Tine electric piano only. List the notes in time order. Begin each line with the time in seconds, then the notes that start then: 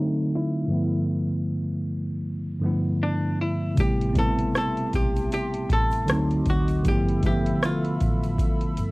Already playing: D3 F#3 A3 C4 D#4
0.67 G2 D3 F3 A3
0.72 B3 E4
2.59 G2 D3 F3
2.64 A3 B3 E4
3.75 C3 G3 A3
3.80 B3 E4
4.13 G3 A3 C4
4.18 B3 E4
6.06 D3 F#3 A3
6.11 C4 D#4
6.83 D3 F3 A3
6.87 B3 E4
7.20 D3 F3 A3
7.25 B3 E5